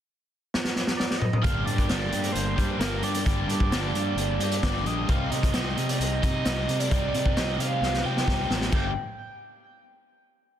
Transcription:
0.54 snare
0.65 snare
0.76 snare
0.87 snare
0.97 D5, snare
1.11 snare
1.18 D#5, mid tom
1.33 mid tom
1.42 G1 G2 D3 G3 A#3 D4 G4 F5, kick, closed hi-hat
1.65 G2 D5, closed hi-hat
1.78 kick, closed hi-hat
1.87 G1 G3 A#3 D4 G4 D5, snare, closed hi-hat
2.13 G2, closed hi-hat
2.24 closed hi-hat
2.32 G1 C5, closed hi-hat
2.56 G2 G3 A#3 D4 G4, kick, closed hi-hat
2.79 G1 G2 D3 G3 A#3 D4 G4 A#4, snare, closed hi-hat
3.02 G2 G3 A#3 D4 G4 D5, closed hi-hat
3.15 closed hi-hat
3.25 G1 G2 D3 G3 A#3 D4 G4 D5, kick, closed hi-hat
3.47 G2, closed hi-hat
3.60 kick
3.70 G1 G3 A#3 D4 G4, snare, closed hi-hat
3.93 G2, closed hi-hat
4.15 G1, closed hi-hat
4.38 G2 D4 G4, closed hi-hat
4.42 G3 A#3
4.52 closed hi-hat
4.62 G1 G2 D3 G3 A#3 D4 G4 D5, kick, snare, closed hi-hat
4.84 A#1 G3 A#3 D4 G4 D#5, closed hi-hat
5.08 C2 C3 G3 C4 D#4 G4 F5, kick, closed hi-hat
5.31 C3 D#5, closed hi-hat
5.43 kick, closed hi-hat
5.53 C2 G3 C4 D#4 G4 D#5, snare, closed hi-hat
5.77 C3, closed hi-hat
5.89 D5, closed hi-hat
5.99 C2 D#5, closed hi-hat
6.22 C3 C4 D#4 G4 D#5, kick, closed hi-hat
6.44 C2 C3 G3 C4 D#4 G4, snare, closed hi-hat
6.68 C3 C4 D#4 G4, closed hi-hat
6.79 D5, closed hi-hat
6.90 C2 C3 G3 C4 D#4 G4, kick, closed hi-hat
7.14 C3, closed hi-hat
7.26 D#5, kick
7.35 C2 G3 C4 D#4 G4, snare, closed hi-hat
7.58 C3 F5, closed hi-hat
7.81 C2, snare
7.94 snare
8.03 C3 C4 D#4 G4 G5
8.17 snare
8.27 C2 C3 G3 C4 D#4 G4, kick, snare
8.48 A1 C4 D#4 G4, snare
8.61 snare
8.72 G1 G2 D3 G3 A#3 D4 G4 G5, kick, crash

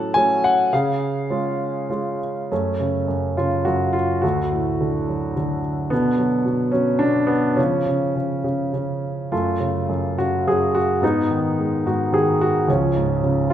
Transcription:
Already playing: A2 F#3 A3 C#4 A4 F#5 A5
0.14 F#3 A3 C#4 G#5
0.44 F#5
0.73 C#3 G#4 F5
1.30 G#3 C#4 F4
1.90 G#3 C#4 F4
2.52 F#2 A3 C#4
2.80 C#3
3.08 F#2
3.37 C#3 F4
3.65 F#2 F#4
3.93 F4
4.22 D2 A3 F#4
4.52 A2
4.81 D3
5.09 F#3
5.36 D3
5.90 B2 D3 B3
6.18 F#3
6.46 B2
6.72 F#3 C#4
6.99 B2 D4
7.27 B3
7.56 C#3 F3 C#4
7.86 C#3
8.16 C#3
8.44 C#3
8.73 C#3
9.32 F#2 A3 F4
9.60 C#3
9.89 F#2
10.18 C#3 F#4
10.47 F#2 G#4
10.75 F#4
11.02 G#2 B3 D#4
11.30 D#3
11.59 G#3
11.86 G#2 F#4
12.12 D#3 G#4
12.41 F#4
12.68 C#2 F3 C#4
12.96 G#2
13.23 C#3
13.50 F4

